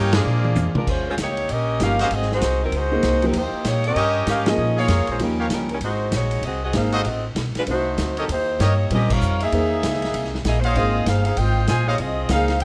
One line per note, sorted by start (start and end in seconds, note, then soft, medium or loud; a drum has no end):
0.00 0.24 G2 loud
0.00 0.14 A#3 medium
0.00 0.14 C#4 medium
0.00 0.14 D#4 medium
0.00 0.14 G4 medium
0.00 0.14 A#4 medium
0.00 0.14 C#5 medium
0.00 0.14 G5 medium
0.12 0.76 F3 medium
0.12 0.21 G#3 loud
0.12 0.76 G#3 medium
0.12 0.76 A#3 medium
0.12 0.21 D4 medium
0.12 0.76 D4 medium
0.12 0.21 F4 medium
0.12 0.76 F4 medium
0.12 0.21 G#4 loud
0.12 0.76 G#4 medium
0.12 0.76 D5 medium
0.12 snare loud
0.12 ride medium
0.25 0.55 A#2 medium
0.44 high tom medium
0.55 0.74 F2 medium
0.55 hi-hat pedal medium
0.55 high tom medium
0.74 0.88 D4 medium
0.74 0.88 F4 medium
0.74 0.88 A#4 medium
0.74 muted upright bass stroke soft
0.74 mid tom medium
0.78 0.88 G#3 medium
0.87 1.17 D#2 medium
0.87 1.07 G#3 medium
0.87 1.07 C#4 medium
0.87 1.07 F4 medium
0.87 1.08 C5 medium
0.87 kick medium
0.87 crash medium
1.10 1.15 G#3 medium
1.10 1.15 C#4 medium
1.10 1.15 F4 medium
1.10 1.15 C5 medium
1.17 1.48 C#2 medium
1.17 snare medium
1.17 hi-hat pedal medium
1.17 ride medium
1.22 1.49 A#3 medium
1.22 1.49 D#4 medium
1.22 1.49 G4 medium
1.22 1.49 C#5 medium
1.37 ride soft
1.49 1.79 A#1 medium
1.49 1.82 C#4 medium
1.49 1.82 G4 medium
1.49 1.82 A#4 medium
1.49 1.82 D#5 loud
1.49 ride medium
1.79 2.10 G1 medium
1.79 1.97 F3 medium
1.79 1.98 A#3 soft
1.79 1.98 D#4 soft
1.79 1.98 G4 medium
1.79 snare medium
1.79 hi-hat pedal medium
1.79 ride medium
1.84 2.00 C#4 medium
1.84 2.00 G4 medium
1.84 2.00 A#4 medium
1.84 2.00 F5 loud
1.99 2.12 C#4 medium
1.99 2.07 F#4 medium
1.99 2.12 G4 medium
1.99 2.08 G#4 medium
1.99 2.12 A#4 medium
1.99 2.07 C5 medium
1.99 2.08 D#5 medium
1.99 2.12 F5 loud
1.99 snare soft
1.99 ride soft
2.11 2.40 G#1 medium
2.11 2.32 C4 medium
2.11 2.32 F#4 medium
2.11 2.32 G#4 medium
2.11 2.32 D#5 loud
2.11 ride medium
2.22 snare soft
2.32 2.61 G#3 medium
2.32 2.61 D#4 medium
2.32 2.61 F#4 medium
2.32 2.61 C5 medium
2.32 snare soft
2.41 2.71 C2 medium
2.41 snare medium
2.41 hi-hat pedal medium
2.41 ride medium
2.64 2.74 F#3 medium
2.64 2.74 C4 medium
2.64 2.74 D#4 medium
2.64 2.74 A#4 medium
2.72 3.02 C#2 medium
2.72 ride medium
2.76 3.25 G#3 medium
2.76 3.25 D#4 medium
2.76 3.25 F#4 medium
2.76 3.25 C5 medium
2.91 3.21 A#3 medium
2.91 3.21 D#4 medium
2.91 3.21 G#4 medium
2.91 3.22 C5 medium
3.03 3.33 C2 medium
3.03 snare medium
3.03 hi-hat pedal soft
3.03 ride medium
3.22 3.34 F3 medium
3.22 3.34 A#3 medium
3.22 3.36 C4 medium
3.22 3.34 D#4 medium
3.22 3.34 G4 medium
3.22 3.36 A#4 medium
3.22 ride soft
3.26 3.36 F#3 medium
3.26 3.36 D#4 medium
3.33 3.52 D#2 medium
3.33 3.67 A#3 medium
3.33 3.67 D#4 medium
3.33 3.67 G4 medium
3.33 3.67 C5 medium
3.33 ride medium
3.53 muted upright bass stroke soft
3.64 3.95 A#2 medium
3.64 3.86 D#4 medium
3.64 3.86 C#5 medium
3.64 snare medium
3.64 hi-hat pedal medium
3.64 ride medium
3.68 3.86 A#3 medium
3.68 3.86 G4 medium
3.84 4.26 C#4 medium
3.84 4.26 G4 medium
3.84 4.26 A#4 medium
3.84 4.26 D#5 loud
3.84 ride soft
3.95 4.26 G2 medium
3.95 4.43 G4 loud
3.95 4.43 A#4 medium
3.95 4.42 C#5 medium
3.95 4.43 D#5 loud
3.95 ride medium
4.26 4.57 G#2 medium
4.26 4.48 C#4 medium
4.26 4.47 G4 medium
4.26 4.48 A#4 medium
4.26 4.48 F5 loud
4.26 snare medium
4.26 hi-hat pedal medium
4.26 ride medium
4.46 4.87 F3 medium
4.46 4.87 A#3 medium
4.46 4.79 C#4 medium
4.46 4.87 D#4 medium
4.46 4.88 G#4 medium
4.46 4.78 G#4 medium
4.46 4.79 A#4 medium
4.46 4.78 D#5 loud
4.46 snare medium
4.46 ride medium
4.58 4.87 A#2 medium
4.77 5.07 A#3 medium
4.77 5.07 F4 medium
4.77 5.18 G#4 medium
4.77 5.07 G#4 medium
4.77 5.17 A#4 medium
4.77 5.17 C#5 medium
4.77 5.07 C#5 medium
4.77 5.17 F5 medium
4.88 5.00 F2 loud
4.88 snare medium
4.88 hi-hat pedal medium
4.88 ride medium
4.98 5.08 C#2 medium
5.07 5.18 A#1 medium
5.07 5.21 G#3 medium
5.07 5.20 F4 medium
5.07 ride soft
5.11 5.21 C#4 medium
5.11 5.21 C5 medium
5.18 5.49 D#2 medium
5.18 5.66 F3 medium
5.18 5.66 A#3 medium
5.18 5.67 D#4 medium
5.18 5.67 G4 medium
5.18 ride medium
5.22 5.50 G3 medium
5.22 5.50 C#4 medium
5.22 5.50 D#4 medium
5.22 5.50 A#4 medium
5.38 5.47 G4 medium
5.38 5.47 A#4 medium
5.38 5.47 C#5 medium
5.38 5.47 F5 medium
5.50 5.80 C#2 medium
5.50 5.70 G3 medium
5.50 5.70 C#4 medium
5.50 5.70 D#4 medium
5.50 snare medium
5.50 hi-hat pedal medium
5.50 ride medium
5.54 5.70 A#4 medium
5.69 5.78 A#4 medium
5.69 ride soft
5.73 5.78 G3 medium
5.73 5.78 C#4 medium
5.73 5.78 D#4 medium
5.81 6.11 G#1 medium
5.81 6.12 G#3 medium
5.81 6.12 D#4 medium
5.81 6.12 F#4 medium
5.81 6.12 C5 medium
5.81 ride medium
6.12 6.41 A#1 medium
6.12 6.45 F#4 medium
6.12 snare medium
6.12 hi-hat pedal medium
6.12 ride medium
6.16 6.45 G#3 medium
6.16 6.45 D#4 medium
6.16 6.45 C#5 medium
6.31 ride medium
6.42 6.73 C2 medium
6.42 ride medium
6.46 6.63 C4 medium
6.46 6.63 F#4 medium
6.46 6.63 G#4 medium
6.46 6.63 D#5 medium
6.64 6.74 C4 medium
6.64 6.74 F#4 medium
6.64 6.75 G#4 medium
6.64 6.75 D#5 medium
6.73 7.03 G#1 medium
6.73 6.92 A#3 medium
6.73 6.92 D#4 medium
6.73 7.06 D#4 medium
6.73 6.92 G#4 medium
6.73 7.06 G#4 medium
6.73 7.06 C5 medium
6.73 6.93 C5 medium
6.73 7.06 F5 medium
6.73 snare medium
6.73 hi-hat pedal medium
6.73 ride medium
6.92 7.01 F#4 medium
6.92 7.01 A4 medium
6.92 7.01 C5 medium
6.92 7.01 D#5 loud
6.92 ride soft
7.04 7.35 A1 medium
7.04 7.25 C4 medium
7.04 7.25 F#4 medium
7.04 7.25 A4 medium
7.04 7.25 D#5 medium
7.04 ride medium
7.35 7.53 B1 medium
7.35 snare medium
7.35 hi-hat pedal medium
7.35 ride medium
7.55 7.63 F4 medium
7.55 7.63 B4 medium
7.55 muted upright bass stroke soft
7.55 snare soft
7.55 ride soft
7.59 7.63 G#3 medium
7.59 7.63 D4 medium
7.67 7.97 C2 medium
7.67 8.15 A3 medium
7.67 8.14 C4 medium
7.67 8.14 D#4 soft
7.67 8.15 D#4 medium
7.67 8.14 F#4 medium
7.67 8.15 F#4 medium
7.67 8.14 C5 medium
7.67 8.15 C5 medium
7.67 ride medium
7.98 8.28 D2 medium
7.98 snare medium
7.98 hi-hat pedal medium
7.98 ride medium
8.17 8.29 F#3 medium
8.17 8.29 C4 medium
8.17 8.29 D#4 medium
8.17 8.25 G4 medium
8.17 8.29 A4 medium
8.17 8.25 A#4 medium
8.17 8.25 C#5 medium
8.17 8.25 D#5 medium
8.17 ride medium
8.28 8.59 D#2 medium
8.28 8.59 A#3 medium
8.28 8.59 G4 medium
8.28 8.59 C5 medium
8.28 ride medium
8.32 8.59 D#4 medium
8.59 8.89 G2 loud
8.59 8.90 A#3 medium
8.59 8.90 D#4 medium
8.59 8.73 G4 medium
8.59 8.90 G4 medium
8.59 8.73 A#4 medium
8.59 8.73 C#5 medium
8.59 8.90 C#5 medium
8.59 8.73 D#5 medium
8.59 snare medium
8.59 hi-hat pedal medium
8.59 ride medium
8.90 9.20 A#2 medium
8.90 9.37 G3 medium
8.90 9.37 C4 medium
8.90 9.38 F4 medium
8.90 9.10 G4 medium
8.90 9.38 A#4 medium
8.90 9.10 A#4 medium
8.90 9.10 D#5 medium
8.90 ride medium
8.95 9.10 C#4 medium
9.10 9.42 D#4 medium
9.10 9.42 A#4 medium
9.10 9.42 C#5 medium
9.10 9.42 F5 medium
9.10 kick medium
9.10 crash medium
9.21 9.51 F2 medium
9.21 hi-hat pedal medium
9.40 10.42 A#3 medium
9.40 10.42 D#4 medium
9.40 10.42 G#4 medium
9.40 10.42 E5 loud
9.40 ride medium
9.52 9.82 E2 medium
9.52 9.99 D#3 medium
9.52 9.99 A#3 medium
9.52 9.99 G#4 medium
9.52 9.99 C5 medium
9.52 ride medium
9.83 10.13 C#2 medium
9.83 snare medium
9.83 hi-hat pedal medium
9.83 ride medium
9.94 snare soft
10.02 snare soft
10.02 ride soft
10.14 10.44 C2 medium
10.14 ride medium
10.24 snare soft
10.35 snare soft
10.44 10.74 A#1 medium
10.44 10.59 A#3 medium
10.44 10.59 E4 medium
10.44 10.60 G#4 medium
10.44 10.59 D#5 medium
10.44 snare medium
10.44 hi-hat pedal soft
10.44 ride medium
10.61 11.04 G#4 medium
10.61 10.65 C5 medium
10.61 11.04 C5 medium
10.61 11.04 D#5 medium
10.61 11.04 F5 loud
10.61 ride soft
10.65 10.76 A#3 medium
10.65 10.76 D#4 medium
10.65 10.76 F#4 medium
10.65 10.76 C#5 medium
10.75 11.05 G#1 medium
10.75 11.22 A#3 medium
10.75 11.07 C4 medium
10.75 11.22 D#4 soft
10.75 11.07 F4 medium
10.75 11.07 G#4 medium
10.75 11.22 G#4 soft
10.75 11.23 C5 medium
10.75 11.07 D#5 loud
10.75 ride medium
11.06 11.36 G1 medium
11.06 11.25 D#4 medium
11.06 11.25 G#4 medium
11.06 11.25 C5 medium
11.06 11.25 F5 medium
11.06 snare medium
11.06 hi-hat pedal medium
11.06 ride medium
11.25 11.37 D#4 medium
11.25 11.37 G#4 medium
11.25 11.37 C5 medium
11.25 11.37 F5 medium
11.25 ride medium
11.37 11.67 G#1 medium
11.37 11.68 F4 medium
11.37 11.68 C5 medium
11.37 11.68 D#5 medium
11.37 11.68 G5 loud
11.37 ride medium
11.68 11.98 A#1 medium
11.68 11.86 F4 medium
11.68 11.86 C5 medium
11.68 11.86 D#5 medium
11.68 11.86 G#5 loud
11.68 snare medium
11.68 hi-hat pedal medium
11.68 ride medium
11.87 11.99 A#3 medium
11.87 11.99 D#4 medium
11.87 11.99 G4 medium
11.87 11.95 G#4 medium
11.87 11.95 C5 medium
11.87 11.99 C#5 medium
11.87 11.95 D#5 medium
11.87 11.95 F5 loud
11.98 12.29 C2 medium
11.98 12.31 C4 medium
11.98 12.30 F4 medium
11.98 12.29 G#4 medium
11.98 12.30 D#5 medium
11.98 ride medium
12.29 12.59 C#2 loud
12.29 12.47 A#3 medium
12.29 12.47 D#4 medium
12.29 12.59 D#4 medium
12.29 12.59 G#4 medium
12.29 12.47 G#4 medium
12.29 12.59 C5 medium
12.29 12.48 C5 medium
12.29 12.59 F5 loud
12.29 snare medium
12.29 hi-hat pedal medium
12.29 ride medium
12.48 snare soft
12.48 ride soft
12.60 12.64 D#2 medium
12.60 ride medium